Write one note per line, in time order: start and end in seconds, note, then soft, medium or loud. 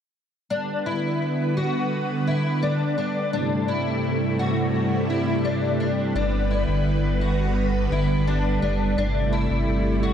0.50 3.30 D3 medium
0.50 10.13 G3 medium
0.50 3.30 B3 medium
0.50 0.86 D4 medium
0.50 3.30 B4 medium
0.86 1.56 E4 medium
1.57 2.27 F#4 medium
2.27 2.63 E4 medium
2.63 2.96 D4 medium
2.98 3.32 D4 medium
3.33 6.13 G2 medium
3.33 6.12 C3 medium
3.33 6.13 A3 medium
3.33 3.68 D4 medium
3.33 6.13 E4 medium
3.68 4.39 E4 medium
4.39 5.10 F#4 medium
5.10 5.45 E4 medium
5.45 5.79 D4 medium
5.80 6.14 D4 medium
6.15 6.65 G1 medium
6.15 8.95 D3 medium
6.15 8.95 B3 medium
6.15 6.51 D4 medium
6.15 8.95 B4 medium
6.51 7.21 E4 medium
6.68 6.85 G1 loud
6.86 7.88 G1 medium
7.21 7.92 F#4 medium
7.91 8.58 G1 medium
7.91 8.27 E4 medium
8.27 8.61 D4 medium
8.62 8.96 F#1 medium
8.62 8.97 D4 medium
8.97 9.48 G1 medium
8.97 10.13 C3 medium
8.97 10.13 A3 medium
8.97 9.33 D4 medium
8.97 10.13 E4 medium
9.33 10.03 E4 medium
9.50 9.67 G1 medium
9.68 10.13 G1 medium
10.03 10.13 F#4 medium